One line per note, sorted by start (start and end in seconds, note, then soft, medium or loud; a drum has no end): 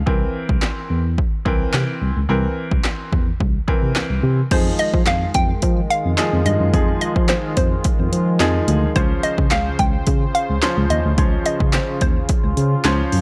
0.06 0.24 C2 loud
0.06 1.00 E3 medium
0.06 1.00 C4 medium
0.06 1.00 A#4 medium
0.06 kick loud
0.49 0.57 C2 medium
0.49 kick medium
0.62 snare medium
0.62 clap loud
0.90 1.16 E2 medium
1.18 kick medium
1.45 1.63 C2 medium
1.45 2.16 E3 medium
1.45 2.16 C4 medium
1.45 2.16 A#4 loud
1.45 kick medium
1.74 1.83 C3 medium
1.74 snare loud
1.74 clap loud
2.01 2.10 C2 medium
2.16 2.24 C#2 medium
2.29 2.46 C2 loud
2.29 3.22 E3 medium
2.29 3.22 C4 medium
2.29 3.22 A#4 medium
2.71 2.79 C2 medium
2.71 kick medium
2.84 snare medium
2.84 clap loud
3.13 3.30 E2 medium
3.13 kick medium
3.40 3.57 C2 medium
3.40 kick medium
3.68 3.74 C3 soft
3.68 4.38 E3 medium
3.68 4.38 C4 medium
3.68 4.38 A#4 medium
3.68 kick medium
3.83 3.91 C3 medium
3.96 4.02 C2 soft
3.96 snare loud
3.96 clap loud
4.10 4.18 C2 medium
4.23 4.40 C3 loud
4.51 4.68 F2 loud
4.51 8.92 D#3 medium
4.51 5.44 F3 medium
4.51 8.92 G#3 medium
4.51 5.44 D#4 medium
4.51 8.92 F4 medium
4.51 5.44 G#4 medium
4.51 4.64 C5 loud
4.51 kick loud
4.51 closed hi-hat medium
4.51 crash medium
4.79 4.92 D#5 loud
4.79 closed hi-hat medium
4.94 5.02 F3 loud
4.94 kick medium
5.06 5.24 F2 medium
5.06 5.36 F5 loud
5.06 snare medium
5.06 clap loud
5.06 closed hi-hat medium
5.34 5.52 F2 medium
5.34 5.92 G5 loud
5.34 kick medium
5.34 closed hi-hat medium
5.62 5.80 F3 loud
5.62 kick medium
5.62 closed hi-hat loud
5.90 6.48 F5 loud
5.90 closed hi-hat medium
6.05 6.13 F2 medium
6.18 6.65 F3 medium
6.18 6.65 D#4 medium
6.18 6.65 G#4 medium
6.18 snare medium
6.18 clap loud
6.18 closed hi-hat loud
6.33 6.41 F2 loud
6.46 6.55 G2 medium
6.46 6.97 D#5 loud
6.46 closed hi-hat medium
6.60 6.68 F#2 medium
6.73 6.91 F2 loud
6.73 7.66 F3 medium
6.73 7.66 D#4 medium
6.73 7.67 G#4 medium
6.73 kick loud
6.73 closed hi-hat medium
7.01 7.30 D#5 medium
7.01 closed hi-hat medium
7.16 7.33 F3 loud
7.16 kick medium
7.29 7.42 C5 medium
7.29 snare medium
7.29 clap loud
7.29 closed hi-hat medium
7.57 7.74 F2 loud
7.57 8.09 C5 medium
7.57 kick medium
7.57 closed hi-hat medium
7.84 kick medium
7.84 closed hi-hat loud
7.99 8.07 F2 medium
8.12 8.40 F3 medium
8.12 closed hi-hat medium
8.40 8.57 F2 loud
8.40 8.87 F3 medium
8.40 8.87 D#4 medium
8.40 8.87 G#4 loud
8.40 snare loud
8.40 clap loud
8.40 closed hi-hat medium
8.68 8.85 D2 loud
8.68 closed hi-hat medium
8.95 9.13 C#2 loud
8.95 13.21 C#3 medium
8.95 9.89 F3 medium
8.95 9.89 C#4 medium
8.95 13.21 F4 loud
8.95 9.24 C5 loud
8.95 13.21 C5 medium
8.95 9.89 C5 medium
8.95 kick loud
8.95 closed hi-hat medium
9.23 9.52 D#5 loud
9.23 closed hi-hat medium
9.38 9.46 C#3 loud
9.38 kick loud
9.51 9.68 C#2 medium
9.51 9.80 F5 loud
9.51 snare loud
9.51 clap loud
9.51 closed hi-hat medium
9.79 9.96 C#2 medium
9.79 10.36 G5 loud
9.79 kick medium
9.79 closed hi-hat medium
10.07 10.24 C#3 loud
10.07 kick medium
10.07 closed hi-hat loud
10.35 10.92 F5 loud
10.35 closed hi-hat medium
10.49 10.57 C#2 medium
10.62 11.09 F3 medium
10.62 11.09 C#4 medium
10.62 11.09 C5 medium
10.62 snare loud
10.62 clap loud
10.62 closed hi-hat loud
10.77 10.85 C#2 medium
10.90 10.99 D#2 medium
10.90 11.45 D#5 loud
10.90 closed hi-hat medium
11.05 11.13 D2 medium
11.18 11.35 C#2 loud
11.18 12.11 F3 medium
11.18 12.11 C#4 medium
11.18 12.11 C5 medium
11.18 kick loud
11.18 closed hi-hat medium
11.46 11.74 D#5 medium
11.46 closed hi-hat medium
11.60 11.77 C#3 medium
11.60 kick medium
11.73 12.01 C5 medium
11.73 snare loud
11.73 clap loud
11.73 closed hi-hat medium
12.01 12.18 D#2 medium
12.01 12.53 C5 medium
12.01 kick medium
12.01 closed hi-hat medium
12.29 kick medium
12.29 closed hi-hat loud
12.44 12.52 C#2 medium
12.57 12.74 C#3 medium
12.57 closed hi-hat medium
12.84 13.02 C#2 loud
12.84 13.21 F3 medium
12.84 13.21 C#4 medium
12.84 13.21 C5 loud
12.84 snare loud
12.84 clap loud
12.84 closed hi-hat loud
13.12 13.21 F#2 medium
13.12 open hi-hat medium